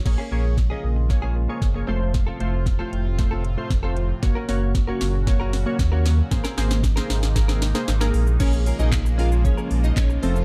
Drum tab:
CC |x---------------|----------------|----------------|----------------|
HH |----------------|x-x-x-x-x-x-x-x-|x-o-x-o-x-o-x-o-|x-o-x-o-x-o-x-o-|
SH |----------------|----------------|----------------|xxxxxxxxxxxxxxxx|
CP |----------------|----------------|----------------|----------------|
SD |o---o---o---o---|o---o---o---o---|o-o-o-o-o-o-o-o-|oooooooooooooo--|
BD |o---o---o---o---|o---o---o---o---|o---o---o---o---|o---o---o-------|

CC |x---------------|
HH |x-o-x-o-x-o-x-o-|
SH |xxxxxxxxxxxxxxxx|
CP |----x-------x---|
SD |----o-------o---|
BD |o---o---o---o---|